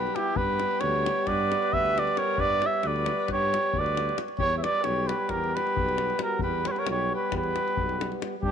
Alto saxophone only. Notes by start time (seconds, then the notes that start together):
Already playing: G4
0.18 E4
0.37 G4
0.83 G4
1.28 B4
1.74 B4
1.96 B4
2.18 A#4
2.38 B4
2.63 C#5
2.84 B4
3.32 G4
3.80 B4
4.39 G4
4.58 C#5
4.63 B4
4.81 G4
5.08 G4
5.32 G4
5.55 G4
6.20 F#4
6.42 G4
6.66 A#4
6.72 G4
6.78 A#4
6.91 G4
7.13 G4
7.34 G4
8.43 D4